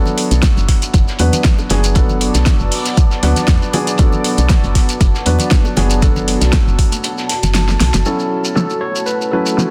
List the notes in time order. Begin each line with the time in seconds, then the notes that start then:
Already playing: F#3 B3 D4 A4 E5
0.06 low conga, shekere
0.17 D5, closed hi-hat, open hi-hat
0.24 F#4
0.31 B1, closed hi-hat, shekere
0.43 A5, kick, snare, closed hi-hat, shekere
0.57 F#1, closed hi-hat, shekere
0.68 kick, snare, closed hi-hat, open hi-hat
0.82 closed hi-hat, shekere
0.94 F#1, kick, closed hi-hat, shekere
1.08 snare, shekere
1.19 E2 F#3 B3 D4 B4, closed hi-hat, open hi-hat
1.33 closed hi-hat, low conga, shekere
1.44 kick, snare, closed hi-hat, shekere
1.59 high bongo, shekere
1.70 F#1 F#3 B3 D4 G#4, snare, closed hi-hat, open hi-hat, low conga
1.84 closed hi-hat, shekere
1.95 F#3 B3 D4 A4, kick, closed hi-hat, shekere
2.09 low conga, shekere
2.21 closed hi-hat, open hi-hat
2.35 B1, snare, closed hi-hat, shekere
2.46 kick, snare, closed hi-hat, shekere
2.59 F#1, shekere
2.71 open hi-hat
2.86 snare, closed hi-hat, shekere
2.97 kick, closed hi-hat, shekere
3.11 snare, shekere
3.23 D2 F#3 B3 D4 B4, snare, closed hi-hat, open hi-hat
3.36 snare, closed hi-hat, low conga, shekere
3.48 E2, kick, snare, closed hi-hat, shekere
3.62 shekere
3.73 F#3 B3 D4 G#4, closed hi-hat, open hi-hat, low conga
3.87 closed hi-hat, high bongo, shekere
3.98 F#3 B3 D4 A4, kick, closed hi-hat, shekere
4.13 low conga, shekere
4.24 closed hi-hat, open hi-hat
4.38 B1, closed hi-hat, shekere
4.49 kick, snare, closed hi-hat, shekere
4.63 F#1, closed hi-hat, shekere
4.75 kick, snare, closed hi-hat, open hi-hat
4.89 closed hi-hat, shekere
5.01 F#1, kick, closed hi-hat, shekere
5.15 snare, shekere
5.26 E2 F#3 B3 D4 B4, closed hi-hat, open hi-hat
5.39 closed hi-hat, low conga, shekere
5.51 kick, snare, closed hi-hat, shekere
5.65 high bongo, shekere
5.76 F#1 F#3 B3 D4 G#4, snare, closed hi-hat, open hi-hat, low conga
5.90 closed hi-hat, shekere
6.02 F#3 B3 D4 A4, kick, closed hi-hat, shekere
6.16 low conga, shekere
6.28 closed hi-hat, open hi-hat
6.41 B1, snare, closed hi-hat, shekere
6.53 kick, snare, closed hi-hat, shekere
6.67 F#1, shekere
6.79 kick, closed hi-hat, open hi-hat
6.92 closed hi-hat, high conga, shekere
7.04 closed hi-hat, high bongo, shekere
7.18 snare, shekere
7.29 snare, closed hi-hat, open hi-hat
7.43 F#1, snare, closed hi-hat, low conga, shekere
7.54 snare, closed hi-hat, shekere
7.69 snare, high conga, shekere
7.80 B1, snare, closed hi-hat, open hi-hat, low conga
7.93 F#1, snare, closed hi-hat, high bongo, shekere
8.05 F#3 A3 C#4 E4 F#4 A4 C#5 F#5, closed hi-hat, shekere
8.19 shekere
8.31 closed hi-hat
8.45 closed hi-hat, shekere
8.56 A4, snare, closed hi-hat, shekere
8.70 shekere
8.81 C#5, snare, closed hi-hat
8.96 E5, closed hi-hat, shekere
9.06 B4, closed hi-hat, shekere
9.21 snare, shekere
9.32 F#3 C#4 E4 A4 B4, closed hi-hat
9.46 closed hi-hat, shekere
9.58 snare, closed hi-hat, shekere